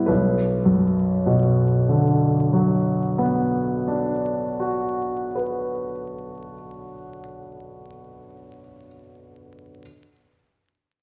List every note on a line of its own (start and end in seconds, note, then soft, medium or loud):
0.00 0.12 G3 soft
0.00 0.12 B3 soft
0.00 0.11 E4 soft
0.06 4.08 B1 soft
0.06 4.07 B4 soft
0.65 4.66 F#2 soft
1.26 5.27 B2 soft
1.89 5.90 D3 soft
2.53 6.54 F#3 soft
3.18 7.19 B3 soft
3.87 7.88 D4 soft
4.60 8.61 F#4 soft
5.35 8.87 B4 soft